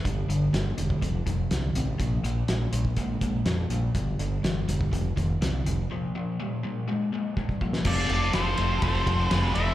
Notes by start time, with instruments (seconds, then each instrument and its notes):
0.05 fingered electric bass G1, distorted electric guitar G2 D3, kick, closed hi-hat
0.28 fingered electric bass G1, distorted electric guitar G2 D3, closed hi-hat
0.53 fingered electric bass G1, distorted electric guitar G2 E3, snare, closed hi-hat
0.78 fingered electric bass E1, distorted electric guitar G2 D3, closed hi-hat
0.90 kick
1.02 fingered electric bass F1, distorted electric guitar F2 C3, kick, closed hi-hat
1.27 fingered electric bass F1, distorted electric guitar F2 D#3, kick, closed hi-hat
1.51 fingered electric bass C2, distorted electric guitar F2 D3, snare, closed hi-hat
1.75 fingered electric bass A1, distorted electric guitar F2 C3, closed hi-hat
2.00 fingered electric bass A#1, distorted electric guitar A#2 F3, kick, closed hi-hat
2.23 fingered electric bass A#1, distorted electric guitar A#2 F3, closed hi-hat
2.48 fingered electric bass A#1, distorted electric guitar A#2 G3, snare, closed hi-hat
2.73 fingered electric bass A#1, distorted electric guitar A#2 F3, closed hi-hat
2.85 kick
2.97 fingered electric bass A#1, distorted electric guitar A#2 G#3, kick, closed hi-hat
3.21 fingered electric bass A#1, distorted electric guitar A#2 G#3, kick, closed hi-hat
3.45 fingered electric bass F2, distorted electric guitar A#2 G3, snare, closed hi-hat
3.70 fingered electric bass A#1, distorted electric guitar A#2 F3, closed hi-hat
3.95 fingered electric bass G1, distorted electric guitar G2 D3, kick, closed hi-hat
4.19 fingered electric bass G1, distorted electric guitar G2 D3, closed hi-hat
4.43 fingered electric bass G1, distorted electric guitar G2 E3, snare, closed hi-hat
4.68 fingered electric bass E1, distorted electric guitar G2 D3, closed hi-hat
4.81 kick
4.91 fingered electric bass F1, distorted electric guitar F2 C3, kick, closed hi-hat
5.16 fingered electric bass F1, distorted electric guitar F2 D#3, kick, closed hi-hat
5.42 fingered electric bass C2, distorted electric guitar F2 D3, snare, closed hi-hat
5.66 fingered electric bass F1, distorted electric guitar F2 C3, closed hi-hat
5.90 distorted electric guitar A#2 F3
6.15 distorted electric guitar A#2 F3
6.40 distorted electric guitar A#2 G3
6.63 distorted electric guitar A#2 F3
6.88 distorted electric guitar A#2 G#3
7.13 distorted electric guitar A#2 G#3
7.37 distorted electric guitar A#2 G3, kick
7.49 kick
7.61 distorted electric guitar A#2 F3, kick
7.73 snare
7.84 fingered electric bass F1, overdriven electric guitar F2 C3, distorted electric guitar F3 A3 C4 F4 A4, lead electric guitar D5, kick, crash
8.09 fingered electric bass F1, ride
8.33 fingered electric bass F1, overdriven electric guitar F2 C3, distorted electric guitar F3 A3 C4 F4 A4, lead electric guitar C5, snare, ride
8.57 fingered electric bass F1, overdriven electric guitar F2 C3, distorted electric guitar F3 A3 C4 F4 A4, ride
8.82 fingered electric bass F1, overdriven electric guitar F2 C3, distorted electric guitar F3 A3 C4 F4 A4, lead electric guitar C5, kick, ride
9.07 fingered electric bass F1, kick, ride
9.30 fingered electric bass F1, overdriven electric guitar F2 C3, distorted electric guitar F3 A3 C4 F4 A4, lead electric guitar G#4 B4, snare, ride
9.55 fingered electric bass F1, overdriven electric guitar F2 C3, distorted electric guitar F3 A3 C4 F4 A4, lead electric guitar C5 E5, ride